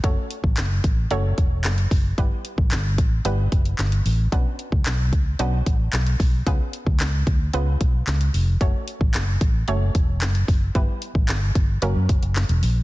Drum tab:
HH |x-x-x-x-x-x-xxo-|x-x-x-x-x-xxxxo-|x-x-x-x-x-x-xxo-|x-x-x-x-x-x-xxo-|
CP |----x-------x---|----x-------x---|----x-------x---|----x-------x---|
SD |----o-------o---|----o-------o---|----o-------o---|----o-------o---|
BD |o--o--o---o---o-|o--o--o---o-----|o--o--o---o---o-|o--o--o---o-----|

HH |x-x-x-x-x-x-xxo-|x-x-x-x-x-xxxxo-|
CP |----x-------x---|----x-------x---|
SD |----o-------o---|----o-------o---|
BD |o--o--o---o---o-|o--o--o---o-----|